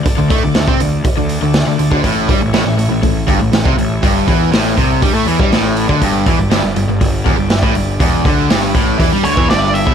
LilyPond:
<<
  \new Staff \with { instrumentName = "Lead electric guitar" } { \time 4/4 \key a \mixolydian \tempo 4 = 121 r1 | r1 | r1 | r1 |
r2 r8 cis''8 d''8 e''8 | }
  \new Staff \with { instrumentName = "Tonewheel organ" } { \time 4/4 \key a \mixolydian <a d' d''>1 | <a e' cis''>1~ | <a e' cis''>1 | <g d' d''>1~ |
<g d' d''>1 | }
  \new Staff \with { instrumentName = "Distorted electric guitar" } { \clef bass \time 4/4 \key a \mixolydian r16 d16 a16 d16 d16 c'16 d8 r16 d8 d8 d16 d16 d16 | a,8 g16 a,16 a,16 a,16 a,16 a,16 a,8 g,16 a,16 a,16 c16 a,8 | g,8 e8 a,8 c8 g16 a16 e16 g16 a,8. d16 | g,8 e16 g,16 g,16 g,16 g,16 g,16 g,8 e,16 g,16 g,16 a,16 g,8 |
e,8 d8 g,8 a,8 e16 g16 d16 e16 g,8. b,16 | }
  \new Staff \with { instrumentName = "Overdriven electric guitar" } { \clef bass \time 4/4 \key a \mixolydian r16 d16 a16 d16 d16 c'16 d8 r16 d8 d8 d16 d16 d16 | a,8 g16 a,16 a,16 a,16 a,16 a,16 a,8 g,16 a,16 a,16 c16 a,8 | g,8 e8 a,8 c8 g16 a16 e16 g16 a,8. d16 | g,8 e16 g,16 g,16 g,16 g,16 g,16 g,8 e,16 g,16 g,16 a,16 g,8 |
e,8 d8 g,8 a,8 e16 g16 d16 e16 g,8. b,16 | }
  \new Staff \with { instrumentName = "Picked electric bass" } { \clef bass \time 4/4 \key a \mixolydian r16 d,16 a,16 d,16 d,16 c16 d,8 r16 d,8 d,8 d,16 d,16 d,16 | a,,8 g,16 a,,16 a,,16 a,,16 a,,16 a,,16 a,,8 g,,16 a,,16 a,,16 c,16 a,,8 | g,,8 e,8 a,,8 c,8 g,16 a,16 e,16 g,16 a,,8. d,16 | g,,8 e,16 g,,16 g,,16 g,,16 g,,16 g,,16 g,,8 e,,16 g,,16 g,,16 a,,16 g,,8 |
e,,8 d,8 g,,8 a,,8 e,16 g,16 d,16 e,16 g,,8. b,,16 | }
  \new DrumStaff \with { instrumentName = "Drums" } \drummode { \time 4/4 <hho bd>8 <hho bd>8 <hho sn>16 bd16 hho8 <hho bd>8 hho8 <hho sn>8 hho16 bd16 | <hho bd>8 <hho bd>8 <hho sn>8 hho8 <hho bd>8 <hho bd>8 <hho sn>16 bd16 hho8 | <hho bd>8 <hho bd>8 <hho sn>8 <hho bd>8 <hho bd>8 hho16 bd16 <hho sn>8 hho16 bd16 | <hho bd>8 <hho bd>8 <hho sn>8 hho8 <hho bd>8 <hho bd>8 <hho sn>16 bd16 hho8 |
<hho bd>8 <hho bd>8 <hho sn>8 <hho bd>8 <hho bd>8 hho16 bd16 <hho sn>8 hho16 bd16 | }
>>